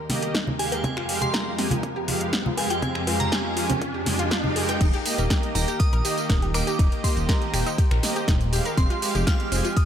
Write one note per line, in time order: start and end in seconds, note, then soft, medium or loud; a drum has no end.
0.00 0.80 D#2 medium
0.00 0.80 D#3 medium
0.00 0.80 A#3 medium
0.00 4.77 A#4 medium
0.00 riser medium
0.09 0.30 A#3 medium
0.09 0.30 G4 medium
0.09 0.30 D#5 medium
0.09 snare medium
0.09 open hi-hat loud
0.09 high conga medium
0.22 0.32 G4 medium
0.22 closed hi-hat medium
0.35 0.38 D#4 loud
0.35 kick loud
0.35 snare loud
0.35 closed hi-hat medium
0.47 high conga loud
0.59 1.06 G#3 medium
0.59 1.06 G4 medium
0.59 0.66 G4 medium
0.59 1.06 F5 medium
0.59 0.71 G#5 medium
0.59 open hi-hat medium
0.72 0.76 A#4 medium
0.72 0.78 G5 medium
0.72 closed hi-hat medium
0.72 cowbell medium
0.84 4.77 F2 medium
0.84 4.77 F3 medium
0.84 4.77 G#3 medium
0.84 0.94 C4 loud
0.84 1.23 G#5 medium
0.84 kick loud
0.84 closed hi-hat medium
0.84 high conga loud
0.97 1.01 F4 loud
0.97 finger snap medium
1.09 1.56 G#3 loud
1.09 1.56 G4 medium
1.09 1.56 F5 loud
1.09 open hi-hat loud
1.22 1.28 G4 medium
1.22 1.27 C6 loud
1.22 closed hi-hat medium
1.22 high conga medium
1.34 1.43 F4 medium
1.34 1.80 A#5 medium
1.34 kick loud
1.34 snare loud
1.34 closed hi-hat soft
1.58 1.72 G#3 medium
1.58 1.68 C4 medium
1.58 1.72 G4 medium
1.58 1.72 G#5 loud
1.58 snare medium
1.58 open hi-hat loud
1.71 1.75 F4 medium
1.71 closed hi-hat medium
1.71 high conga loud
1.83 kick loud
1.83 closed hi-hat soft
1.96 2.00 G4 loud
2.08 2.29 G#3 medium
2.08 2.12 F4 medium
2.08 2.29 G4 medium
2.08 2.29 F5 medium
2.08 open hi-hat loud
2.08 high conga medium
2.21 closed hi-hat medium
2.33 2.39 G4 medium
2.33 kick loud
2.33 snare loud
2.33 closed hi-hat soft
2.46 2.55 F4 medium
2.46 high conga loud
2.57 3.04 G#3 medium
2.57 3.04 G4 medium
2.57 2.62 G4 medium
2.57 3.04 F5 medium
2.57 2.71 G#5 medium
2.57 open hi-hat loud
2.57 cowbell loud
2.70 2.74 F4 medium
2.70 2.83 G5 medium
2.70 closed hi-hat medium
2.82 2.92 C4 medium
2.82 3.21 G#5 loud
2.82 kick loud
2.82 closed hi-hat medium
2.82 high conga medium
2.95 finger snap medium
3.07 3.54 G#3 loud
3.07 3.11 F4 medium
3.07 3.54 G4 medium
3.07 3.54 F5 loud
3.07 open hi-hat loud
3.07 cowbell medium
3.20 3.32 A#5 loud
3.20 closed hi-hat medium
3.20 high conga medium
3.32 3.36 G4 medium
3.32 3.78 G#5 medium
3.32 kick loud
3.32 snare loud
3.32 closed hi-hat soft
3.57 3.70 G#3 medium
3.57 3.63 F4 medium
3.57 3.70 G4 medium
3.57 3.70 G#5 loud
3.57 open hi-hat loud
3.70 3.73 C4 medium
3.70 closed hi-hat medium
3.70 high conga medium
3.81 3.85 F4 medium
3.81 kick loud
3.81 closed hi-hat soft
3.81 swell medium
3.94 4.00 G4 medium
4.06 4.19 G#3 medium
4.06 4.19 G4 medium
4.06 4.19 G#5 medium
4.06 snare medium
4.06 open hi-hat loud
4.06 high conga medium
4.19 4.25 F4 loud
4.19 closed hi-hat medium
4.31 4.38 F4 loud
4.31 kick loud
4.31 snare loud
4.31 closed hi-hat medium
4.44 4.54 G#3 medium
4.44 4.54 G4 medium
4.44 4.54 F5 medium
4.44 high conga medium
4.56 4.76 G#3 loud
4.56 4.76 G4 medium
4.56 4.62 G#4 loud
4.56 4.76 G5 loud
4.56 open hi-hat loud
4.69 4.78 G5 loud
4.69 closed hi-hat medium
4.69 cowbell medium
4.81 4.90 D#1 loud
4.81 8.73 D#3 medium
4.81 8.73 D#4 medium
4.81 4.90 D#4 loud
4.81 9.85 G4 medium
4.81 6.77 A#4 medium
4.81 4.90 D#5 medium
4.81 kick loud
4.81 closed hi-hat medium
4.81 crash loud
4.81 ride medium
4.81 tambourine soft
4.94 4.97 G4 loud
4.94 4.97 G5 medium
4.94 closed hi-hat soft
5.05 5.52 A#3 loud
5.05 5.52 G4 medium
5.05 5.52 D#5 loud
5.05 open hi-hat loud
5.05 ride medium
5.05 tambourine medium
5.18 5.27 D#1 medium
5.18 5.24 A#4 medium
5.18 5.24 A#5 medium
5.18 closed hi-hat soft
5.18 ride soft
5.18 tambourine soft
5.30 5.40 G4 medium
5.30 5.40 G5 medium
5.30 kick loud
5.30 snare loud
5.30 closed hi-hat loud
5.30 ride medium
5.30 tambourine soft
5.43 closed hi-hat soft
5.43 ride soft
5.55 5.64 D#1 medium
5.55 5.68 A#3 medium
5.55 5.65 D#4 medium
5.55 5.68 G4 medium
5.55 5.65 D#5 medium
5.55 5.68 G5 loud
5.55 5.81 A#5 medium
5.55 open hi-hat medium
5.55 ride medium
5.55 tambourine medium
5.68 5.72 G4 medium
5.68 5.72 G5 medium
5.68 closed hi-hat soft
5.68 tambourine soft
5.80 6.56 D#6 loud
5.80 kick loud
5.80 closed hi-hat medium
5.80 ride medium
5.80 tambourine soft
5.93 6.01 A#1 medium
5.93 5.96 A#4 loud
5.93 5.96 A#5 medium
5.93 closed hi-hat soft
6.05 6.25 A#3 medium
6.05 6.25 G4 medium
6.05 6.09 G4 medium
6.05 6.25 D#5 medium
6.05 6.09 G5 medium
6.05 open hi-hat medium
6.05 open hi-hat loud
6.05 tambourine medium
6.18 snare medium
6.18 closed hi-hat soft
6.18 tambourine soft
6.30 6.61 D#1 loud
6.30 6.36 A#4 medium
6.30 6.36 A#5 medium
6.30 kick loud
6.30 snare loud
6.30 closed hi-hat medium
6.30 ride medium
6.30 tambourine soft
6.42 6.51 G4 medium
6.42 6.51 G5 medium
6.42 snare soft
6.42 closed hi-hat soft
6.54 7.01 A#3 medium
6.54 7.01 G4 medium
6.54 6.58 A#4 medium
6.54 7.01 D#5 medium
6.54 6.58 A#5 medium
6.54 7.05 D6 loud
6.54 finger snap medium
6.54 open hi-hat medium
6.54 ride medium
6.54 tambourine medium
6.67 6.71 G4 medium
6.67 6.71 G5 medium
6.67 snare soft
6.67 closed hi-hat soft
6.67 tambourine soft
6.79 6.88 D#1 loud
6.79 6.89 D#4 medium
6.79 8.76 C5 loud
6.79 6.89 D#5 medium
6.79 kick loud
6.79 closed hi-hat loud
6.79 ride medium
6.79 tambourine soft
6.92 closed hi-hat soft
6.92 ride soft
7.04 7.51 A#3 loud
7.04 7.08 G4 medium
7.04 7.51 G4 medium
7.04 7.51 D#5 loud
7.04 7.08 G5 medium
7.04 7.15 C6 medium
7.04 kick medium
7.04 snare medium
7.04 open hi-hat loud
7.04 ride medium
7.04 tambourine medium
7.17 7.25 D#1 medium
7.17 closed hi-hat soft
7.17 ride soft
7.17 tambourine soft
7.29 7.33 A#4 loud
7.29 7.33 A#5 medium
7.29 8.49 A#5 medium
7.29 kick loud
7.29 snare loud
7.29 closed hi-hat medium
7.29 ride medium
7.29 tambourine soft
7.42 closed hi-hat soft
7.53 7.63 D#1 medium
7.53 7.67 A#3 medium
7.53 7.60 G4 medium
7.53 7.67 G4 medium
7.53 7.60 G5 medium
7.53 7.67 G5 medium
7.53 finger snap medium
7.53 open hi-hat loud
7.53 ride medium
7.53 tambourine medium
7.66 7.70 D#4 medium
7.66 7.70 D#5 medium
7.66 closed hi-hat soft
7.66 tambourine soft
7.78 7.82 G4 medium
7.78 7.82 G5 medium
7.78 kick loud
7.78 closed hi-hat medium
7.78 ride medium
7.78 tambourine soft
7.91 8.00 A#1 medium
7.91 7.97 A#4 medium
7.91 7.97 A#5 medium
7.91 finger snap medium
7.91 closed hi-hat soft
7.91 ride soft
8.03 8.24 A#3 medium
8.03 8.24 G4 medium
8.03 8.24 D#5 medium
8.03 snare medium
8.03 open hi-hat loud
8.03 ride medium
8.03 tambourine medium
8.16 8.25 G4 medium
8.16 8.25 G5 medium
8.16 closed hi-hat soft
8.16 tambourine soft
8.28 8.60 D#1 loud
8.28 8.32 D#4 loud
8.28 8.32 D#5 medium
8.28 kick loud
8.28 snare loud
8.28 closed hi-hat loud
8.28 ride medium
8.28 tambourine soft
8.41 closed hi-hat soft
8.41 ride soft
8.53 8.99 G#3 medium
8.53 8.99 G4 medium
8.53 8.59 G4 medium
8.53 8.99 F5 medium
8.53 8.59 G5 medium
8.53 open hi-hat medium
8.53 ride medium
8.53 tambourine medium
8.65 8.69 A#4 medium
8.65 8.69 A#5 medium
8.65 closed hi-hat soft
8.65 tambourine soft
8.77 8.87 F1 loud
8.77 9.85 F3 medium
8.77 9.85 G#3 medium
8.77 8.87 C4 loud
8.77 9.85 C4 medium
8.77 8.87 C5 medium
8.77 9.29 C6 loud
8.77 kick loud
8.77 closed hi-hat medium
8.77 ride medium
8.77 tambourine soft
8.90 8.94 F4 loud
8.90 8.94 F5 medium
8.90 closed hi-hat soft
9.02 9.49 G#3 loud
9.02 9.49 G4 medium
9.02 9.49 F5 loud
9.02 open hi-hat loud
9.02 ride medium
9.02 tambourine medium
9.15 9.24 F1 medium
9.15 9.21 G4 medium
9.15 9.21 G5 medium
9.15 closed hi-hat soft
9.15 ride soft
9.15 tambourine soft
9.27 9.37 F4 medium
9.27 9.37 F5 medium
9.27 9.78 F6 loud
9.27 kick loud
9.27 snare loud
9.27 closed hi-hat medium
9.27 ride medium
9.27 tambourine soft
9.40 closed hi-hat soft
9.40 ride soft
9.52 9.61 F1 medium
9.52 9.65 G#3 medium
9.52 9.61 C4 medium
9.52 9.65 G4 medium
9.52 9.61 C5 medium
9.52 9.65 G#5 loud
9.52 open hi-hat loud
9.52 ride medium
9.52 tambourine medium
9.65 9.68 F4 medium
9.65 9.68 F5 medium
9.65 closed hi-hat soft
9.65 tambourine soft
9.77 9.85 D#6 loud
9.77 kick loud
9.77 closed hi-hat medium
9.77 ride medium
9.77 tambourine soft